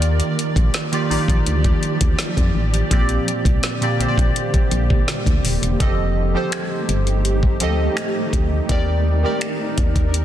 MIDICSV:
0, 0, Header, 1, 5, 480
1, 0, Start_track
1, 0, Tempo, 722892
1, 13, Time_signature, 4, 2, 24, 8
1, 6805, End_track
2, 0, Start_track
2, 0, Title_t, "Synth keys"
2, 0, Program_c, 0, 88
2, 0, Control_c, 0, 64, 127
2, 0, Note_on_c, 0, 51, 92
2, 0, Note_on_c, 0, 58, 82
2, 0, Note_on_c, 0, 65, 83
2, 0, Note_on_c, 0, 67, 83
2, 0, Note_on_c, 0, 74, 97
2, 443, Note_off_c, 0, 51, 0
2, 446, Note_off_c, 0, 58, 0
2, 448, Note_off_c, 0, 65, 0
2, 450, Note_off_c, 0, 67, 0
2, 453, Note_off_c, 0, 74, 0
2, 610, Note_on_c, 0, 51, 83
2, 615, Note_on_c, 0, 58, 76
2, 619, Note_on_c, 0, 65, 80
2, 624, Note_on_c, 0, 67, 78
2, 628, Note_on_c, 0, 74, 95
2, 688, Note_off_c, 0, 51, 0
2, 691, Note_off_c, 0, 58, 0
2, 693, Note_off_c, 0, 65, 0
2, 695, Note_off_c, 0, 67, 0
2, 697, Note_off_c, 0, 74, 0
2, 730, Note_on_c, 0, 63, 85
2, 734, Note_on_c, 0, 58, 78
2, 739, Note_on_c, 0, 65, 81
2, 743, Note_on_c, 0, 67, 83
2, 747, Note_on_c, 0, 74, 98
2, 1347, Note_off_c, 0, 63, 0
2, 1349, Note_off_c, 0, 58, 0
2, 1351, Note_off_c, 0, 65, 0
2, 1353, Note_off_c, 0, 67, 0
2, 1355, Note_off_c, 0, 74, 0
2, 1930, Note_on_c, 0, 46, 79
2, 1935, Note_on_c, 0, 58, 79
2, 1940, Note_on_c, 0, 60, 79
2, 1942, Control_c, 0, 64, 0
2, 1945, Note_on_c, 0, 67, 82
2, 1948, Note_on_c, 0, 74, 91
2, 2069, Control_c, 0, 64, 127
2, 2316, Note_off_c, 0, 46, 0
2, 2318, Note_off_c, 0, 58, 0
2, 2321, Note_off_c, 0, 60, 0
2, 2323, Note_off_c, 0, 67, 0
2, 2325, Note_off_c, 0, 74, 0
2, 2530, Note_on_c, 0, 46, 85
2, 2535, Note_on_c, 0, 58, 74
2, 2540, Note_on_c, 0, 60, 74
2, 2544, Note_on_c, 0, 67, 78
2, 2548, Note_on_c, 0, 74, 90
2, 2608, Note_off_c, 0, 46, 0
2, 2611, Note_off_c, 0, 58, 0
2, 2613, Note_off_c, 0, 60, 0
2, 2615, Note_off_c, 0, 67, 0
2, 2617, Note_off_c, 0, 74, 0
2, 2650, Note_on_c, 0, 46, 84
2, 2655, Note_on_c, 0, 58, 78
2, 2659, Note_on_c, 0, 60, 76
2, 2663, Note_on_c, 0, 67, 78
2, 2668, Note_on_c, 0, 72, 76
2, 2704, Note_off_c, 0, 72, 0
2, 2712, Note_on_c, 0, 74, 93
2, 3267, Note_off_c, 0, 46, 0
2, 3269, Note_off_c, 0, 58, 0
2, 3271, Note_off_c, 0, 60, 0
2, 3273, Note_off_c, 0, 67, 0
2, 3298, Note_off_c, 0, 74, 0
2, 3849, Note_on_c, 0, 53, 80
2, 3854, Note_on_c, 0, 60, 76
2, 3858, Note_on_c, 0, 67, 74
2, 3860, Control_c, 0, 64, 0
2, 3863, Note_on_c, 0, 69, 77
2, 3867, Note_on_c, 0, 75, 86
2, 3987, Control_c, 0, 64, 127
2, 4082, Note_off_c, 0, 53, 0
2, 4084, Note_off_c, 0, 60, 0
2, 4086, Note_off_c, 0, 67, 0
2, 4088, Note_off_c, 0, 69, 0
2, 4091, Note_off_c, 0, 75, 0
2, 4211, Note_on_c, 0, 53, 79
2, 4215, Note_on_c, 0, 60, 78
2, 4219, Note_on_c, 0, 67, 75
2, 4224, Note_on_c, 0, 69, 74
2, 4228, Note_on_c, 0, 72, 91
2, 4750, Note_off_c, 0, 53, 0
2, 4752, Note_off_c, 0, 60, 0
2, 4754, Note_off_c, 0, 67, 0
2, 4756, Note_off_c, 0, 69, 0
2, 4759, Note_off_c, 0, 72, 0
2, 5050, Note_on_c, 0, 53, 83
2, 5054, Note_on_c, 0, 60, 73
2, 5059, Note_on_c, 0, 67, 72
2, 5063, Note_on_c, 0, 69, 75
2, 5067, Note_on_c, 0, 75, 91
2, 5513, Note_off_c, 0, 53, 0
2, 5515, Note_off_c, 0, 60, 0
2, 5517, Note_off_c, 0, 67, 0
2, 5519, Note_off_c, 0, 69, 0
2, 5521, Note_off_c, 0, 75, 0
2, 5769, Note_on_c, 0, 51, 82
2, 5773, Note_on_c, 0, 60, 75
2, 5778, Note_on_c, 0, 67, 73
2, 5782, Control_c, 0, 64, 0
2, 5782, Note_on_c, 0, 70, 69
2, 5786, Note_on_c, 0, 74, 93
2, 5911, Control_c, 0, 64, 127
2, 6002, Note_off_c, 0, 51, 0
2, 6004, Note_off_c, 0, 60, 0
2, 6006, Note_off_c, 0, 67, 0
2, 6008, Note_off_c, 0, 70, 0
2, 6010, Note_off_c, 0, 74, 0
2, 6129, Note_on_c, 0, 51, 82
2, 6134, Note_on_c, 0, 60, 73
2, 6138, Note_on_c, 0, 67, 78
2, 6142, Note_on_c, 0, 70, 76
2, 6147, Note_on_c, 0, 74, 86
2, 6669, Note_off_c, 0, 51, 0
2, 6672, Note_off_c, 0, 60, 0
2, 6674, Note_off_c, 0, 67, 0
2, 6676, Note_off_c, 0, 70, 0
2, 6678, Note_off_c, 0, 74, 0
2, 6805, End_track
3, 0, Start_track
3, 0, Title_t, "Ambient pad"
3, 0, Program_c, 1, 92
3, 0, Note_on_c, 1, 53, 80
3, 0, Note_on_c, 1, 67, 91
3, 0, Note_on_c, 1, 74, 70
3, 1906, Note_off_c, 1, 74, 0
3, 1911, Note_off_c, 1, 53, 0
3, 1911, Note_off_c, 1, 67, 0
3, 1932, Note_on_c, 1, 50, 77
3, 1932, Note_on_c, 1, 58, 73
3, 1932, Note_on_c, 1, 67, 84
3, 3833, Note_off_c, 1, 50, 0
3, 3833, Note_off_c, 1, 58, 0
3, 3833, Note_off_c, 1, 67, 0
3, 3851, Note_on_c, 1, 57, 70
3, 3851, Note_on_c, 1, 67, 86
3, 3852, Note_on_c, 1, 63, 76
3, 5753, Note_off_c, 1, 57, 0
3, 5753, Note_off_c, 1, 67, 0
3, 5772, Note_on_c, 1, 62, 69
3, 5772, Note_on_c, 1, 70, 87
3, 6805, Note_off_c, 1, 62, 0
3, 6805, Note_off_c, 1, 63, 0
3, 6805, Note_off_c, 1, 70, 0
3, 6805, End_track
4, 0, Start_track
4, 0, Title_t, "FM bass"
4, 0, Program_c, 2, 39
4, 0, Note_on_c, 2, 39, 106
4, 140, Note_off_c, 2, 39, 0
4, 373, Note_on_c, 2, 34, 94
4, 464, Note_off_c, 2, 34, 0
4, 734, Note_on_c, 2, 34, 50
4, 782, Note_off_c, 2, 34, 0
4, 853, Note_on_c, 2, 34, 92
4, 944, Note_off_c, 2, 34, 0
4, 974, Note_on_c, 2, 38, 92
4, 1157, Note_off_c, 2, 38, 0
4, 1334, Note_on_c, 2, 38, 99
4, 1425, Note_off_c, 2, 38, 0
4, 1575, Note_on_c, 2, 41, 93
4, 1666, Note_off_c, 2, 41, 0
4, 1694, Note_on_c, 2, 33, 91
4, 1877, Note_off_c, 2, 33, 0
4, 1932, Note_on_c, 2, 34, 102
4, 2116, Note_off_c, 2, 34, 0
4, 2293, Note_on_c, 2, 36, 97
4, 2385, Note_off_c, 2, 36, 0
4, 2653, Note_on_c, 2, 34, 52
4, 2701, Note_off_c, 2, 34, 0
4, 2773, Note_on_c, 2, 34, 84
4, 2864, Note_off_c, 2, 34, 0
4, 3013, Note_on_c, 2, 34, 50
4, 3061, Note_off_c, 2, 34, 0
4, 3132, Note_on_c, 2, 34, 87
4, 3316, Note_off_c, 2, 34, 0
4, 3496, Note_on_c, 2, 38, 93
4, 3586, Note_off_c, 2, 38, 0
4, 3613, Note_on_c, 2, 27, 88
4, 3705, Note_off_c, 2, 27, 0
4, 3732, Note_on_c, 2, 28, 95
4, 3824, Note_off_c, 2, 28, 0
4, 3852, Note_on_c, 2, 29, 103
4, 4220, Note_off_c, 2, 29, 0
4, 4573, Note_on_c, 2, 31, 99
4, 5053, Note_on_c, 2, 38, 86
4, 5063, Note_off_c, 2, 31, 0
4, 5237, Note_off_c, 2, 38, 0
4, 5531, Note_on_c, 2, 38, 90
4, 5715, Note_off_c, 2, 38, 0
4, 5772, Note_on_c, 2, 39, 106
4, 6139, Note_off_c, 2, 39, 0
4, 6492, Note_on_c, 2, 39, 97
4, 6805, Note_off_c, 2, 39, 0
4, 6805, End_track
5, 0, Start_track
5, 0, Title_t, "Drums"
5, 13, Note_on_c, 9, 42, 72
5, 80, Note_off_c, 9, 42, 0
5, 131, Note_on_c, 9, 42, 59
5, 197, Note_off_c, 9, 42, 0
5, 258, Note_on_c, 9, 42, 82
5, 325, Note_off_c, 9, 42, 0
5, 373, Note_on_c, 9, 36, 97
5, 376, Note_on_c, 9, 42, 54
5, 439, Note_off_c, 9, 36, 0
5, 443, Note_off_c, 9, 42, 0
5, 490, Note_on_c, 9, 42, 69
5, 494, Note_on_c, 9, 38, 106
5, 557, Note_off_c, 9, 42, 0
5, 560, Note_off_c, 9, 38, 0
5, 616, Note_on_c, 9, 42, 51
5, 682, Note_off_c, 9, 42, 0
5, 739, Note_on_c, 9, 46, 52
5, 805, Note_off_c, 9, 46, 0
5, 852, Note_on_c, 9, 36, 92
5, 860, Note_on_c, 9, 42, 47
5, 919, Note_off_c, 9, 36, 0
5, 926, Note_off_c, 9, 42, 0
5, 973, Note_on_c, 9, 42, 75
5, 1039, Note_off_c, 9, 42, 0
5, 1092, Note_on_c, 9, 36, 97
5, 1092, Note_on_c, 9, 42, 43
5, 1158, Note_off_c, 9, 42, 0
5, 1159, Note_off_c, 9, 36, 0
5, 1213, Note_on_c, 9, 42, 39
5, 1279, Note_off_c, 9, 42, 0
5, 1333, Note_on_c, 9, 42, 68
5, 1334, Note_on_c, 9, 36, 101
5, 1399, Note_off_c, 9, 42, 0
5, 1400, Note_off_c, 9, 36, 0
5, 1451, Note_on_c, 9, 38, 121
5, 1460, Note_on_c, 9, 42, 74
5, 1518, Note_off_c, 9, 38, 0
5, 1526, Note_off_c, 9, 42, 0
5, 1575, Note_on_c, 9, 36, 90
5, 1578, Note_on_c, 9, 42, 46
5, 1641, Note_off_c, 9, 36, 0
5, 1644, Note_off_c, 9, 42, 0
5, 1817, Note_on_c, 9, 42, 57
5, 1884, Note_off_c, 9, 42, 0
5, 1933, Note_on_c, 9, 36, 108
5, 1933, Note_on_c, 9, 42, 70
5, 1999, Note_off_c, 9, 36, 0
5, 2000, Note_off_c, 9, 42, 0
5, 2051, Note_on_c, 9, 42, 58
5, 2117, Note_off_c, 9, 42, 0
5, 2178, Note_on_c, 9, 42, 75
5, 2245, Note_off_c, 9, 42, 0
5, 2293, Note_on_c, 9, 36, 96
5, 2297, Note_on_c, 9, 42, 52
5, 2359, Note_off_c, 9, 36, 0
5, 2363, Note_off_c, 9, 42, 0
5, 2410, Note_on_c, 9, 42, 66
5, 2414, Note_on_c, 9, 38, 111
5, 2477, Note_off_c, 9, 42, 0
5, 2480, Note_off_c, 9, 38, 0
5, 2536, Note_on_c, 9, 42, 51
5, 2603, Note_off_c, 9, 42, 0
5, 2660, Note_on_c, 9, 42, 71
5, 2726, Note_off_c, 9, 42, 0
5, 2773, Note_on_c, 9, 36, 93
5, 2782, Note_on_c, 9, 42, 51
5, 2839, Note_off_c, 9, 36, 0
5, 2848, Note_off_c, 9, 42, 0
5, 2895, Note_on_c, 9, 42, 74
5, 2962, Note_off_c, 9, 42, 0
5, 3013, Note_on_c, 9, 36, 96
5, 3014, Note_on_c, 9, 42, 44
5, 3080, Note_off_c, 9, 36, 0
5, 3080, Note_off_c, 9, 42, 0
5, 3130, Note_on_c, 9, 42, 61
5, 3197, Note_off_c, 9, 42, 0
5, 3255, Note_on_c, 9, 36, 102
5, 3321, Note_off_c, 9, 36, 0
5, 3373, Note_on_c, 9, 38, 125
5, 3381, Note_on_c, 9, 42, 75
5, 3439, Note_off_c, 9, 38, 0
5, 3448, Note_off_c, 9, 42, 0
5, 3495, Note_on_c, 9, 36, 90
5, 3499, Note_on_c, 9, 42, 49
5, 3562, Note_off_c, 9, 36, 0
5, 3565, Note_off_c, 9, 42, 0
5, 3617, Note_on_c, 9, 46, 80
5, 3683, Note_off_c, 9, 46, 0
5, 3738, Note_on_c, 9, 42, 57
5, 3804, Note_off_c, 9, 42, 0
5, 3853, Note_on_c, 9, 36, 100
5, 3853, Note_on_c, 9, 42, 66
5, 3919, Note_off_c, 9, 36, 0
5, 3920, Note_off_c, 9, 42, 0
5, 4330, Note_on_c, 9, 42, 66
5, 4334, Note_on_c, 9, 26, 108
5, 4397, Note_off_c, 9, 42, 0
5, 4400, Note_off_c, 9, 26, 0
5, 4574, Note_on_c, 9, 42, 63
5, 4641, Note_off_c, 9, 42, 0
5, 4694, Note_on_c, 9, 42, 38
5, 4760, Note_off_c, 9, 42, 0
5, 4814, Note_on_c, 9, 42, 73
5, 4880, Note_off_c, 9, 42, 0
5, 4932, Note_on_c, 9, 36, 93
5, 4999, Note_off_c, 9, 36, 0
5, 5048, Note_on_c, 9, 42, 69
5, 5114, Note_off_c, 9, 42, 0
5, 5291, Note_on_c, 9, 26, 119
5, 5299, Note_on_c, 9, 42, 70
5, 5357, Note_off_c, 9, 26, 0
5, 5366, Note_off_c, 9, 42, 0
5, 5531, Note_on_c, 9, 36, 98
5, 5533, Note_on_c, 9, 42, 76
5, 5597, Note_off_c, 9, 36, 0
5, 5600, Note_off_c, 9, 42, 0
5, 5772, Note_on_c, 9, 36, 104
5, 5772, Note_on_c, 9, 42, 67
5, 5838, Note_off_c, 9, 36, 0
5, 5839, Note_off_c, 9, 42, 0
5, 6249, Note_on_c, 9, 42, 64
5, 6252, Note_on_c, 9, 26, 102
5, 6316, Note_off_c, 9, 42, 0
5, 6319, Note_off_c, 9, 26, 0
5, 6491, Note_on_c, 9, 42, 68
5, 6492, Note_on_c, 9, 36, 94
5, 6558, Note_off_c, 9, 42, 0
5, 6559, Note_off_c, 9, 36, 0
5, 6611, Note_on_c, 9, 36, 90
5, 6612, Note_on_c, 9, 42, 39
5, 6677, Note_off_c, 9, 36, 0
5, 6678, Note_off_c, 9, 42, 0
5, 6733, Note_on_c, 9, 42, 74
5, 6800, Note_off_c, 9, 42, 0
5, 6805, End_track
0, 0, End_of_file